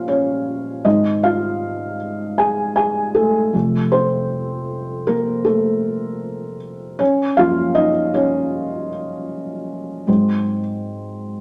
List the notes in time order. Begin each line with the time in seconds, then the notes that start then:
Already playing: C#4 F4 C#5 F5
0.08 C#4 C#5
0.85 G#2 D#3 C4 D#4 D#5
1.23 F4 F5
2.38 G#4 G#5
2.76 G#4 G#5
3.15 A3 A4
3.53 F2 C3 A3
3.92 C4 C5
5.07 A#3 A#4
5.45 A3 A4
6.99 C#4 C#5
7.37 F#2 F3 A#3 F4 F5
7.75 D#4 D#5
8.14 C#4 C#5
10.07 G#2 F#3 C4